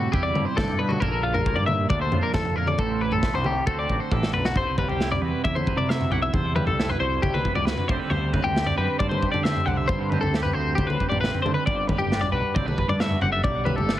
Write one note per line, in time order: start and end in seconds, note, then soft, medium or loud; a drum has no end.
0.00 0.55 C3 medium
0.00 0.32 G3 medium
0.00 0.12 F#4 medium
0.00 1.00 G4 medium
0.00 1.00 B4 medium
0.12 0.32 E2 loud
0.12 1.00 E4 medium
0.12 0.24 G4 medium
0.12 kick loud
0.12 floor tom medium
0.23 0.45 D5 medium
0.33 0.45 G2 medium
0.33 0.98 G3 medium
0.33 floor tom medium
0.33 mid tom medium
0.45 0.57 C5 medium
0.56 0.75 G2 loud
0.56 0.78 C3 medium
0.56 0.79 A4 medium
0.56 kick loud
0.56 snare medium
0.56 mid tom medium
0.69 floor tom medium
0.78 0.97 G2 medium
0.78 1.01 B2 medium
0.78 0.90 B4 medium
0.89 1.00 F#4 medium
0.89 mid tom medium
1.00 1.58 A#1 loud
1.00 2.34 A#2 medium
1.00 2.76 A4 medium
1.00 1.23 A#4 medium
1.00 kick loud
1.00 floor tom medium
1.23 1.36 D4 medium
1.23 1.35 F4 medium
1.34 2.79 F4 medium
1.34 1.57 A#4 medium
1.34 floor tom medium
1.46 2.77 A#3 medium
1.46 kick loud
1.56 1.85 G2 medium
1.56 1.66 D5 medium
1.56 floor tom medium
1.66 1.89 E5 medium
1.66 mid tom medium
1.89 2.08 D2 medium
1.89 2.77 D4 medium
1.89 2.01 D5 medium
1.89 kick loud
1.89 floor tom medium
2.01 2.24 C5 medium
2.12 2.21 F2 medium
2.12 2.76 F3 medium
2.12 floor tom medium
2.12 mid tom medium
2.23 2.34 A#4 medium
2.34 2.52 F2 medium
2.34 2.57 C3 medium
2.34 2.56 A4 medium
2.34 kick loud
2.34 snare medium
2.34 mid tom medium
2.45 floor tom medium
2.56 2.74 F2 medium
2.56 2.79 A#2 medium
2.56 2.67 A#4 medium
2.67 2.79 D5 medium
2.67 mid tom medium
2.78 3.34 A1 medium
2.78 3.24 A2 medium
2.78 3.01 A4 medium
2.78 3.65 C5 medium
2.78 kick loud
2.78 floor tom medium
3.01 3.66 E4 medium
3.01 3.12 B4 medium
3.12 3.34 A4 medium
3.12 floor tom medium
3.23 3.46 B2 medium
3.23 kick loud
3.23 snare medium
3.34 3.61 C2 medium
3.34 3.46 C5 medium
3.34 floor tom medium
3.44 3.68 C3 soft
3.44 3.66 G4 medium
3.44 mid tom medium
3.67 3.85 D2 medium
3.67 4.12 D3 medium
3.67 4.55 A3 soft
3.67 5.02 C4 medium
3.67 3.90 F#4 medium
3.67 3.78 A4 medium
3.67 kick loud
3.72 4.55 C5 medium
3.79 4.00 D5 medium
3.89 3.98 A1 medium
3.89 4.54 F#4 medium
3.89 kick medium
4.00 4.12 C5 medium
4.11 4.32 A1 medium
4.11 4.34 E3 medium
4.11 4.33 A4 medium
4.11 kick loud
4.11 mid tom medium
4.23 snare medium
4.33 4.54 B1 medium
4.33 4.56 D3 medium
4.33 4.45 B4 medium
4.33 floor tom medium
4.45 4.56 F#4 medium
4.45 snare medium
4.55 4.83 C2 medium
4.55 6.31 C3 medium
4.55 4.78 C5 medium
4.55 kick medium
4.55 floor tom medium
4.78 6.55 G3 medium
4.78 4.89 B4 medium
4.78 kick medium
4.78 floor tom medium
4.78 mid tom medium
4.89 5.16 C2 medium
4.89 5.11 G4 medium
4.89 floor tom medium
5.01 5.46 E4 medium
5.01 snare medium
5.12 5.22 D5 medium
5.12 floor tom medium
5.22 5.31 E2 medium
5.22 5.90 F#4 soft
5.22 5.44 B4 medium
5.44 5.72 E2 medium
5.44 6.11 E4 medium
5.44 5.56 E5 medium
5.44 kick loud
5.44 floor tom medium
5.44 mid tom medium
5.55 5.78 C5 medium
5.55 mid tom medium
5.67 6.31 B4 medium
5.67 kick medium
5.67 floor tom medium
5.76 6.04 C3 medium
5.76 5.89 D5 medium
5.76 floor tom medium
5.89 6.32 F#4 soft
5.89 6.12 E5 medium
5.89 snare medium
6.01 floor tom medium
6.10 6.29 B1 medium
6.10 6.31 E4 medium
6.10 6.22 F#5 medium
6.10 floor tom medium
6.22 6.33 E5 medium
6.33 6.68 E2 medium
6.33 7.87 C3 medium
6.33 6.55 C5 medium
6.33 kick loud
6.33 floor tom medium
6.55 7.91 G3 medium
6.55 6.67 B4 medium
6.55 floor tom medium
6.55 mid tom medium
6.67 6.94 C2 medium
6.67 6.89 A4 medium
6.67 floor tom medium
6.80 7.22 E4 medium
6.80 snare medium
6.89 7.00 B4 medium
6.89 floor tom medium
7.00 7.18 C2 medium
7.00 7.67 F#4 soft
7.00 7.22 C5 medium
7.22 7.41 C2 medium
7.22 7.87 E4 medium
7.22 7.34 G4 medium
7.22 kick medium
7.22 floor tom medium
7.22 mid tom medium
7.34 7.55 B4 medium
7.34 mid tom medium
7.45 7.88 B4 medium
7.45 kick medium
7.45 floor tom medium
7.55 7.74 C#2 medium
7.55 7.65 D5 medium
7.55 floor tom medium
7.65 7.87 F#4 medium
7.65 7.88 B4 medium
7.65 snare medium
7.78 floor tom medium
7.88 7.98 D2 medium
7.88 9.64 D3 medium
7.88 8.11 G3 medium
7.88 8.34 C4 soft
7.88 7.99 C5 medium
7.88 kick loud
7.88 floor tom medium
7.88 mid tom medium
7.92 8.58 G4 medium
7.92 9.02 A4 medium
7.99 8.10 B4 medium
8.10 8.38 D2 loud
8.10 9.90 G3 medium
8.10 8.33 C5 medium
8.10 floor tom medium
8.33 8.79 C4 medium
8.33 8.44 B4 medium
8.33 kick medium
8.33 floor tom medium
8.33 mid tom medium
8.44 8.72 D2 medium
8.44 8.66 G4 medium
8.44 floor tom medium
8.56 9.25 G4 medium
8.56 snare medium
8.67 8.77 D5 medium
8.67 floor tom medium
8.78 8.87 F#2 medium
8.78 9.45 C4 soft
8.78 8.99 B4 medium
8.99 9.27 G2 medium
8.99 9.65 C5 medium
8.99 9.09 D5 medium
8.99 kick medium
8.99 floor tom medium
8.99 mid tom medium
9.09 9.31 C5 medium
9.09 mid tom medium
9.22 10.35 G4 medium
9.22 kick medium
9.22 floor tom medium
9.32 9.61 D3 medium
9.32 9.43 D5 medium
9.32 floor tom medium
9.43 10.12 C4 medium
9.43 9.66 E5 medium
9.43 snare medium
9.56 floor tom medium
9.66 9.85 C2 medium
9.66 11.44 D3 medium
9.66 9.77 F#5 medium
9.66 floor tom medium
9.77 9.89 E5 medium
9.88 10.24 G2 loud
9.88 11.88 G3 medium
9.88 10.10 C5 medium
9.88 kick loud
9.88 floor tom medium
10.10 10.56 C4 medium
10.10 10.21 B4 medium
10.10 floor tom medium
10.10 mid tom medium
10.21 10.49 D2 medium
10.21 10.42 A4 medium
10.21 floor tom medium
10.34 11.00 G4 medium
10.34 snare medium
10.43 10.54 B4 medium
10.43 floor tom medium
10.54 10.73 D2 medium
10.54 11.22 C4 soft
10.54 10.75 C5 medium
10.75 10.96 D2 medium
10.75 10.88 G4 medium
10.75 kick loud
10.75 floor tom medium
10.75 mid tom medium
10.79 11.43 C5 medium
10.87 11.09 B4 medium
10.87 mid tom medium
11.00 12.34 G4 medium
11.00 kick medium
11.00 floor tom medium
11.09 11.29 A1 medium
11.09 11.20 D5 medium
11.09 floor tom medium
11.21 12.12 C4 medium
11.21 11.42 B4 medium
11.21 snare medium
11.34 floor tom medium
11.42 11.67 D3 medium
11.42 11.54 D3 medium
11.42 11.54 C5 medium
11.42 floor tom medium
11.42 mid tom medium
11.54 11.66 B4 medium
11.66 11.94 G1 loud
11.66 13.43 G2 medium
11.66 11.87 D5 medium
11.66 kick medium
11.66 floor tom medium
11.87 13.64 G3 medium
11.87 11.99 B4 medium
11.87 kick medium
11.87 floor tom medium
11.87 mid tom medium
11.98 12.26 G1 medium
11.98 12.21 G4 medium
11.98 floor tom medium
12.12 12.54 D4 medium
12.12 snare medium
12.21 12.32 D5 medium
12.21 floor tom medium
12.32 12.41 B1 medium
12.32 12.99 F#4 soft
12.32 12.55 B4 medium
12.55 12.82 B1 medium
12.55 12.67 C4 medium
12.55 12.66 D5 medium
12.55 kick medium
12.55 floor tom medium
12.55 mid tom medium
12.66 13.21 D4 soft
12.66 12.88 B4 medium
12.66 mid tom medium
12.78 13.42 B4 medium
12.78 kick medium
12.78 floor tom medium
12.88 13.15 G2 medium
12.88 13.00 D5 medium
12.88 floor tom medium
13.00 13.42 F#4 medium
13.00 13.22 E5 medium
13.00 snare medium
13.11 floor tom medium
13.21 13.40 F#1 medium
13.21 13.32 C4 soft
13.21 13.32 F#5 medium
13.21 floor tom medium
13.32 13.43 D4 soft
13.32 13.43 E5 medium
13.43 13.80 B1 medium
13.43 14.00 G2 medium
13.43 13.66 D5 medium
13.43 kick loud
13.43 floor tom medium
13.64 14.00 G3 medium
13.64 13.76 B4 medium
13.64 floor tom medium
13.64 mid tom medium
13.76 14.00 G1 medium
13.76 13.99 A4 medium
13.76 floor tom medium
13.89 14.00 D4 medium
13.89 snare medium